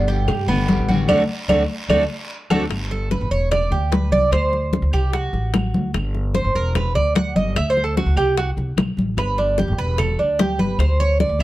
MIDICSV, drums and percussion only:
0, 0, Header, 1, 2, 480
1, 0, Start_track
1, 0, Key_signature, 1, "major"
1, 0, Tempo, 404313
1, 1296, Time_signature, 4, 2, 24, 8
1, 13571, End_track
2, 0, Start_track
2, 0, Title_t, "Drums"
2, 90, Note_on_c, 9, 73, 66
2, 104, Note_on_c, 9, 63, 33
2, 209, Note_off_c, 9, 73, 0
2, 223, Note_off_c, 9, 63, 0
2, 329, Note_on_c, 9, 74, 75
2, 331, Note_on_c, 9, 75, 69
2, 335, Note_on_c, 9, 56, 113
2, 344, Note_on_c, 9, 63, 37
2, 344, Note_on_c, 9, 64, 83
2, 448, Note_off_c, 9, 74, 0
2, 450, Note_off_c, 9, 75, 0
2, 454, Note_off_c, 9, 56, 0
2, 463, Note_off_c, 9, 63, 0
2, 463, Note_off_c, 9, 64, 0
2, 581, Note_on_c, 9, 63, 34
2, 581, Note_on_c, 9, 64, 74
2, 700, Note_off_c, 9, 63, 0
2, 700, Note_off_c, 9, 64, 0
2, 810, Note_on_c, 9, 73, 72
2, 812, Note_on_c, 9, 56, 68
2, 817, Note_on_c, 9, 63, 87
2, 929, Note_off_c, 9, 73, 0
2, 931, Note_off_c, 9, 56, 0
2, 936, Note_off_c, 9, 63, 0
2, 1049, Note_on_c, 9, 73, 68
2, 1059, Note_on_c, 9, 63, 92
2, 1168, Note_off_c, 9, 73, 0
2, 1178, Note_off_c, 9, 63, 0
2, 1287, Note_on_c, 9, 74, 102
2, 1291, Note_on_c, 9, 75, 97
2, 1293, Note_on_c, 9, 56, 107
2, 1293, Note_on_c, 9, 63, 99
2, 1405, Note_off_c, 9, 74, 0
2, 1409, Note_off_c, 9, 75, 0
2, 1411, Note_off_c, 9, 56, 0
2, 1411, Note_off_c, 9, 63, 0
2, 1772, Note_on_c, 9, 75, 95
2, 1773, Note_on_c, 9, 74, 102
2, 1775, Note_on_c, 9, 63, 103
2, 1778, Note_on_c, 9, 56, 92
2, 1891, Note_off_c, 9, 75, 0
2, 1892, Note_off_c, 9, 74, 0
2, 1893, Note_off_c, 9, 63, 0
2, 1897, Note_off_c, 9, 56, 0
2, 2251, Note_on_c, 9, 75, 99
2, 2255, Note_on_c, 9, 56, 101
2, 2256, Note_on_c, 9, 74, 106
2, 2257, Note_on_c, 9, 63, 104
2, 2370, Note_off_c, 9, 75, 0
2, 2374, Note_off_c, 9, 56, 0
2, 2375, Note_off_c, 9, 74, 0
2, 2376, Note_off_c, 9, 63, 0
2, 2971, Note_on_c, 9, 75, 94
2, 2973, Note_on_c, 9, 74, 102
2, 2976, Note_on_c, 9, 56, 108
2, 2984, Note_on_c, 9, 63, 104
2, 3090, Note_off_c, 9, 75, 0
2, 3092, Note_off_c, 9, 74, 0
2, 3094, Note_off_c, 9, 56, 0
2, 3102, Note_off_c, 9, 63, 0
2, 3212, Note_on_c, 9, 60, 68
2, 3217, Note_on_c, 9, 75, 61
2, 3221, Note_on_c, 9, 63, 32
2, 3331, Note_off_c, 9, 60, 0
2, 3336, Note_off_c, 9, 75, 0
2, 3340, Note_off_c, 9, 63, 0
2, 3456, Note_on_c, 9, 60, 36
2, 3465, Note_on_c, 9, 63, 35
2, 3575, Note_off_c, 9, 60, 0
2, 3584, Note_off_c, 9, 63, 0
2, 3694, Note_on_c, 9, 60, 55
2, 3701, Note_on_c, 9, 63, 58
2, 3813, Note_off_c, 9, 60, 0
2, 3820, Note_off_c, 9, 63, 0
2, 3945, Note_on_c, 9, 63, 33
2, 4064, Note_off_c, 9, 63, 0
2, 4172, Note_on_c, 9, 75, 60
2, 4176, Note_on_c, 9, 60, 68
2, 4179, Note_on_c, 9, 63, 34
2, 4179, Note_on_c, 9, 64, 87
2, 4290, Note_off_c, 9, 75, 0
2, 4294, Note_off_c, 9, 60, 0
2, 4298, Note_off_c, 9, 63, 0
2, 4298, Note_off_c, 9, 64, 0
2, 4415, Note_on_c, 9, 60, 31
2, 4421, Note_on_c, 9, 63, 35
2, 4421, Note_on_c, 9, 64, 73
2, 4534, Note_off_c, 9, 60, 0
2, 4539, Note_off_c, 9, 63, 0
2, 4539, Note_off_c, 9, 64, 0
2, 4659, Note_on_c, 9, 60, 69
2, 4659, Note_on_c, 9, 61, 85
2, 4659, Note_on_c, 9, 63, 77
2, 4778, Note_off_c, 9, 60, 0
2, 4778, Note_off_c, 9, 61, 0
2, 4778, Note_off_c, 9, 63, 0
2, 4898, Note_on_c, 9, 60, 35
2, 4898, Note_on_c, 9, 63, 84
2, 5017, Note_off_c, 9, 60, 0
2, 5017, Note_off_c, 9, 63, 0
2, 5135, Note_on_c, 9, 75, 66
2, 5138, Note_on_c, 9, 60, 68
2, 5144, Note_on_c, 9, 63, 33
2, 5254, Note_off_c, 9, 75, 0
2, 5257, Note_off_c, 9, 60, 0
2, 5263, Note_off_c, 9, 63, 0
2, 5376, Note_on_c, 9, 63, 35
2, 5379, Note_on_c, 9, 60, 39
2, 5494, Note_off_c, 9, 63, 0
2, 5497, Note_off_c, 9, 60, 0
2, 5613, Note_on_c, 9, 63, 59
2, 5619, Note_on_c, 9, 60, 60
2, 5732, Note_off_c, 9, 63, 0
2, 5738, Note_off_c, 9, 60, 0
2, 5852, Note_on_c, 9, 63, 36
2, 5854, Note_on_c, 9, 75, 67
2, 5971, Note_off_c, 9, 63, 0
2, 5973, Note_off_c, 9, 75, 0
2, 6096, Note_on_c, 9, 60, 67
2, 6099, Note_on_c, 9, 63, 32
2, 6215, Note_off_c, 9, 60, 0
2, 6217, Note_off_c, 9, 63, 0
2, 6334, Note_on_c, 9, 60, 30
2, 6341, Note_on_c, 9, 63, 32
2, 6453, Note_off_c, 9, 60, 0
2, 6460, Note_off_c, 9, 63, 0
2, 6573, Note_on_c, 9, 60, 68
2, 6573, Note_on_c, 9, 61, 83
2, 6575, Note_on_c, 9, 75, 63
2, 6579, Note_on_c, 9, 63, 82
2, 6692, Note_off_c, 9, 60, 0
2, 6692, Note_off_c, 9, 61, 0
2, 6694, Note_off_c, 9, 75, 0
2, 6698, Note_off_c, 9, 63, 0
2, 6820, Note_on_c, 9, 63, 83
2, 6938, Note_off_c, 9, 63, 0
2, 7055, Note_on_c, 9, 75, 70
2, 7057, Note_on_c, 9, 60, 66
2, 7058, Note_on_c, 9, 63, 33
2, 7174, Note_off_c, 9, 75, 0
2, 7176, Note_off_c, 9, 60, 0
2, 7176, Note_off_c, 9, 63, 0
2, 7295, Note_on_c, 9, 60, 39
2, 7300, Note_on_c, 9, 63, 35
2, 7414, Note_off_c, 9, 60, 0
2, 7418, Note_off_c, 9, 63, 0
2, 7533, Note_on_c, 9, 60, 55
2, 7535, Note_on_c, 9, 63, 61
2, 7652, Note_off_c, 9, 60, 0
2, 7654, Note_off_c, 9, 63, 0
2, 7777, Note_on_c, 9, 63, 34
2, 7896, Note_off_c, 9, 63, 0
2, 8017, Note_on_c, 9, 60, 70
2, 8019, Note_on_c, 9, 63, 36
2, 8019, Note_on_c, 9, 64, 83
2, 8020, Note_on_c, 9, 75, 65
2, 8136, Note_off_c, 9, 60, 0
2, 8137, Note_off_c, 9, 63, 0
2, 8137, Note_off_c, 9, 64, 0
2, 8138, Note_off_c, 9, 75, 0
2, 8260, Note_on_c, 9, 63, 34
2, 8260, Note_on_c, 9, 64, 74
2, 8261, Note_on_c, 9, 60, 33
2, 8379, Note_off_c, 9, 63, 0
2, 8379, Note_off_c, 9, 64, 0
2, 8380, Note_off_c, 9, 60, 0
2, 8501, Note_on_c, 9, 60, 71
2, 8501, Note_on_c, 9, 61, 81
2, 8501, Note_on_c, 9, 63, 76
2, 8619, Note_off_c, 9, 60, 0
2, 8619, Note_off_c, 9, 61, 0
2, 8620, Note_off_c, 9, 63, 0
2, 8739, Note_on_c, 9, 60, 35
2, 8741, Note_on_c, 9, 63, 85
2, 8858, Note_off_c, 9, 60, 0
2, 8860, Note_off_c, 9, 63, 0
2, 8978, Note_on_c, 9, 75, 70
2, 8979, Note_on_c, 9, 60, 67
2, 8985, Note_on_c, 9, 63, 34
2, 9097, Note_off_c, 9, 75, 0
2, 9098, Note_off_c, 9, 60, 0
2, 9104, Note_off_c, 9, 63, 0
2, 9220, Note_on_c, 9, 63, 35
2, 9227, Note_on_c, 9, 60, 37
2, 9339, Note_off_c, 9, 63, 0
2, 9346, Note_off_c, 9, 60, 0
2, 9465, Note_on_c, 9, 63, 61
2, 9466, Note_on_c, 9, 60, 59
2, 9584, Note_off_c, 9, 63, 0
2, 9585, Note_off_c, 9, 60, 0
2, 9696, Note_on_c, 9, 75, 63
2, 9706, Note_on_c, 9, 63, 36
2, 9815, Note_off_c, 9, 75, 0
2, 9825, Note_off_c, 9, 63, 0
2, 9943, Note_on_c, 9, 60, 71
2, 9946, Note_on_c, 9, 63, 32
2, 10062, Note_off_c, 9, 60, 0
2, 10065, Note_off_c, 9, 63, 0
2, 10183, Note_on_c, 9, 60, 33
2, 10187, Note_on_c, 9, 63, 35
2, 10302, Note_off_c, 9, 60, 0
2, 10306, Note_off_c, 9, 63, 0
2, 10418, Note_on_c, 9, 75, 67
2, 10422, Note_on_c, 9, 60, 66
2, 10422, Note_on_c, 9, 61, 82
2, 10424, Note_on_c, 9, 63, 78
2, 10537, Note_off_c, 9, 75, 0
2, 10541, Note_off_c, 9, 60, 0
2, 10541, Note_off_c, 9, 61, 0
2, 10543, Note_off_c, 9, 63, 0
2, 10668, Note_on_c, 9, 63, 78
2, 10787, Note_off_c, 9, 63, 0
2, 10898, Note_on_c, 9, 60, 67
2, 10899, Note_on_c, 9, 75, 67
2, 10911, Note_on_c, 9, 63, 31
2, 11017, Note_off_c, 9, 60, 0
2, 11018, Note_off_c, 9, 75, 0
2, 11030, Note_off_c, 9, 63, 0
2, 11136, Note_on_c, 9, 60, 37
2, 11152, Note_on_c, 9, 63, 33
2, 11255, Note_off_c, 9, 60, 0
2, 11270, Note_off_c, 9, 63, 0
2, 11373, Note_on_c, 9, 60, 59
2, 11391, Note_on_c, 9, 63, 61
2, 11491, Note_off_c, 9, 60, 0
2, 11510, Note_off_c, 9, 63, 0
2, 11633, Note_on_c, 9, 63, 35
2, 11752, Note_off_c, 9, 63, 0
2, 11852, Note_on_c, 9, 60, 65
2, 11855, Note_on_c, 9, 75, 64
2, 11869, Note_on_c, 9, 63, 35
2, 11869, Note_on_c, 9, 64, 82
2, 11970, Note_off_c, 9, 60, 0
2, 11974, Note_off_c, 9, 75, 0
2, 11988, Note_off_c, 9, 63, 0
2, 11988, Note_off_c, 9, 64, 0
2, 12096, Note_on_c, 9, 60, 31
2, 12109, Note_on_c, 9, 63, 32
2, 12215, Note_off_c, 9, 60, 0
2, 12227, Note_off_c, 9, 63, 0
2, 12340, Note_on_c, 9, 60, 70
2, 12340, Note_on_c, 9, 61, 85
2, 12346, Note_on_c, 9, 63, 82
2, 12458, Note_off_c, 9, 60, 0
2, 12458, Note_off_c, 9, 61, 0
2, 12465, Note_off_c, 9, 63, 0
2, 12577, Note_on_c, 9, 60, 36
2, 12580, Note_on_c, 9, 63, 84
2, 12696, Note_off_c, 9, 60, 0
2, 12699, Note_off_c, 9, 63, 0
2, 12810, Note_on_c, 9, 75, 71
2, 12822, Note_on_c, 9, 63, 33
2, 12823, Note_on_c, 9, 60, 66
2, 12929, Note_off_c, 9, 75, 0
2, 12941, Note_off_c, 9, 63, 0
2, 12942, Note_off_c, 9, 60, 0
2, 13062, Note_on_c, 9, 60, 36
2, 13065, Note_on_c, 9, 63, 34
2, 13181, Note_off_c, 9, 60, 0
2, 13183, Note_off_c, 9, 63, 0
2, 13298, Note_on_c, 9, 60, 56
2, 13299, Note_on_c, 9, 63, 62
2, 13416, Note_off_c, 9, 60, 0
2, 13417, Note_off_c, 9, 63, 0
2, 13534, Note_on_c, 9, 75, 67
2, 13571, Note_off_c, 9, 75, 0
2, 13571, End_track
0, 0, End_of_file